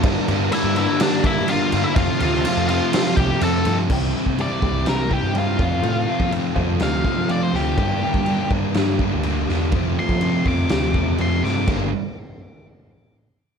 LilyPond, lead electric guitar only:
\new Staff \with { instrumentName = "Lead electric guitar" } { \time 4/4 \key g \dorian \tempo 4 = 124 r4 <e' e''>8 <e' e''>8 <d' d''>8 <e' e''>8 <f' f''>8. <e' e''>16 | <f' f''>8 <f' f''>4 <f' f''>4 <g' g''>8 <a' a''>8. r16 | r4 d''4 bes'8 g'8 f'4~ | f'4 r4 f''4 d''16 c''16 g'8~ |
g'4. r2 r8 | r8 c'''4 d'''4. c'''8 d'''8 | r1 | }